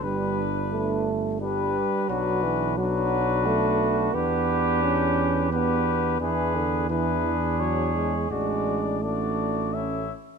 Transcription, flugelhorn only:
X:1
M:3/4
L:1/8
Q:1/4=87
K:Glyd
V:1 name="Flugelhorn"
B3 z B2 | [K:Edor] F2 F4 | G4 G2 | ^G2 G4 |
F2 F2 E z |]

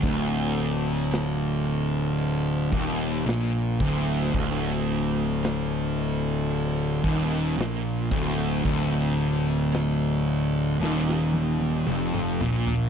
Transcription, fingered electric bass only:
X:1
M:4/4
L:1/8
Q:1/4=56
K:Dm
V:1 name="Fingered electric bass" clef=bass
D,,,4- D,,, _E,,, B,,, D,,, | D,,,4- D,,, _E,,, B,,, D,,, | D,,,4 _E,,,2 F,,, B,,, |]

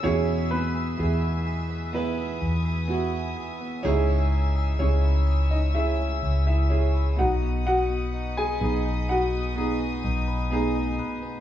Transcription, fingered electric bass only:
X:1
M:4/4
L:1/8
Q:1/4=63
K:E
V:1 name="Fingered electric bass" clef=bass
E,,2 E,,3 E,,2 z | C,,2 C,,3 C,,2 B,,,- | B,,,2 B,,,3 B,,,2 z |]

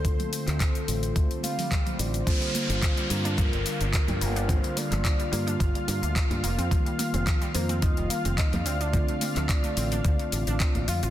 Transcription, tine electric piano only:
X:1
M:4/4
L:1/8
Q:"Swing 16ths" 1/4=108
K:Gm
V:1 name="Tine electric piano"
[D,A,CF]3 [D,A,CF]4- [D,A,CF] | [D,G,B,F]3 [D,G,B,F]4- [D,G,B,F] | [D,G,B,F]3 [D,G,B,F]4 z | [E,G,B,F]3 [E,G,B,F]4 z |
[D,A,CF]3 [D,A,CF]4- [D,A,CF] |]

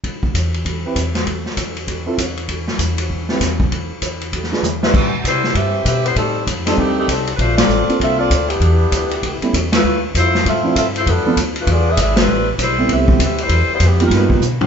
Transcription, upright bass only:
X:1
M:4/4
L:1/8
Q:"Swing" 1/4=196
K:Am
V:1 name="Upright bass" clef=bass
z2 E,,3 z E,,2- | E,, z E,,3 z E,,2- | E,, z E,,3 z E,,2- | E,, z E,,3 z E,,2 |
A,,2 C,2 G,,2 B,,2 | A,,2 F,,2 D,,2 C,,2 | _B,,,2 A,,, z C,,2 D,,2 | E,,2 D,,2 ^C,, z E,,2 |
D,,2 F,,2 A,,2 G,,2 | F,, z D,,2 E,,2 ^G,,,2 | A,,,2 B,,,2 C,,2 D,,2 | E,, z F,,2 G,,2 B,,2 |]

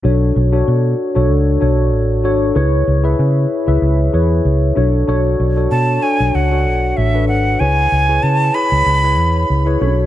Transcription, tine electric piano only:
X:1
M:4/4
L:1/16
Q:"Swing 16ths" 1/4=95
K:Bdor
V:1 name="Tine electric piano"
[DFAc]2 z [DFAc]2 z2 [DFAc]2 z [DFAc]2 z2 [DFAc] z | [EGBc]2 z [EGBe]2 z2 [EGBe]2 z [EGBc]2 z2 [DFAc]2 | [DFAc]2 z [DFAc]2 z [DFAc]2 z [DFAc]2 z2 [DFAB]2 z | [EGBc]2 z [EGBc]2 z [EGBc]2 z [EGBc]2 z2 [EGBc] [CDFAc]2 |]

